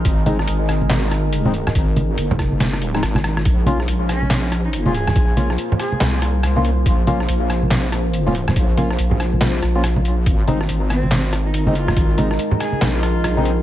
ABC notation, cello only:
X:1
M:4/4
L:1/16
Q:"Swing 16ths" 1/4=141
K:Abmix
V:1 name="Cello"
z16 | z16 | z6 D3 z2 E E A3- | A3 z3 A4 z6 |
z16 | z16 | z6 C3 z2 E E z F2- | F z4 z A3 F6 z |]